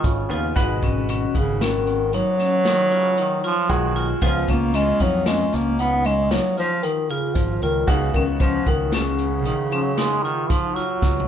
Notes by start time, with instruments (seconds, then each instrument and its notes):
Already playing: grand piano C#3 B3 F4, bass clarinet G#3, vibraphone F4
0.04 fingered electric bass G#1, trombone C#3, kick, closed hi-hat
0.29 fingered electric bass D#2, grand piano C#3 B3 F4, vibraphone F4, closed hi-hat
0.55 fingered electric bass G#1, bass clarinet B2, grand piano G#3 F#4 B4, vibraphone D#4, kick, closed hi-hat, shaker
0.82 fingered electric bass G#1, vibraphone C#4, kick, closed hi-hat
1.09 vibraphone C#4, closed hi-hat
1.35 fingered electric bass G#1, bass clarinet C#3, vibraphone D#4, kick, closed hi-hat
1.61 bass clarinet D#3, vibraphone C#4, snare, closed hi-hat, shaker
1.87 closed hi-hat, shaker
2.13 bass clarinet F#3, vibraphone D#4, closed hi-hat
2.39 vibraphone C#4, snare, closed hi-hat, shaker
2.65 trombone D#3, vibraphone D#4, snare, closed hi-hat
2.91 trombone C#3, vibraphone F4, closed hi-hat, shaker
3.17 trombone D#3, vibraphone D#4, closed hi-hat, shaker
3.44 trombone F3, vibraphone F4, closed hi-hat, shaker
3.69 fingered electric bass B1, trombone D#3, grand piano G#3 F#4 G#4, kick, closed hi-hat
3.96 vibraphone F4, closed hi-hat
4.21 fingered electric bass C#2, grand piano C#3 B3 F4, bass clarinet F3, vibraphone F4, kick, closed hi-hat, shaker
4.48 fingered electric bass C#2, bass clarinet A#3, vibraphone C#4, kick, closed hi-hat
4.74 bass clarinet G#3, vibraphone C#4, snare, closed hi-hat
5.00 fingered electric bass F2, bass clarinet F#3, vibraphone D#4, kick, snare, closed hi-hat
5.26 bass clarinet G#3, vibraphone C#4, snare, closed hi-hat, shaker
5.52 fingered electric bass C#2, bass clarinet A#3, snare, closed hi-hat, shaker
5.79 bass clarinet B3, vibraphone D#4, closed hi-hat
6.04 bass clarinet G#3, vibraphone C#4, closed hi-hat, shaker
6.31 bass clarinet F#3, vibraphone D#4, snare, closed hi-hat
6.57 bass clarinet F3, vibraphone F4, snare, closed hi-hat, shaker
6.83 bass clarinet D#3, vibraphone D#4, closed hi-hat, shaker
7.09 bass clarinet C#3, vibraphone F4, closed hi-hat, shaker
7.35 fingered electric bass G#1, bass clarinet F3, kick, closed hi-hat
7.62 fingered electric bass C#2, bass clarinet D#3, vibraphone F4, closed hi-hat
7.87 fingered electric bass C#2, grand piano C#3 B3 D#4 F#4, bass clarinet C#3, vibraphone D#4, kick, closed hi-hat, shaker
8.14 fingered electric bass C#2, bass clarinet D#3, vibraphone C#4, kick, closed hi-hat
8.40 bass clarinet F3, vibraphone C#4, kick, closed hi-hat
8.66 fingered electric bass C#2, bass clarinet D#3, vibraphone D#4, kick, closed hi-hat
8.92 bass clarinet C#3, vibraphone C#4, snare, closed hi-hat, shaker
9.18 closed hi-hat, shaker
9.45 trombone D#3, vibraphone D#4, closed hi-hat
9.71 trombone F3, vibraphone C#4, closed hi-hat, shaker
9.84 trombone F#3
9.97 trombone G#3, vibraphone D#4, snare, closed hi-hat
10.23 trombone D#3, vibraphone F4, closed hi-hat
10.50 trombone F3, vibraphone D#4, kick, closed hi-hat
10.75 trombone F#3, vibraphone F4, closed hi-hat, shaker
11.02 fingered electric bass C#2, kick, snare, shaker
11.20 mid tom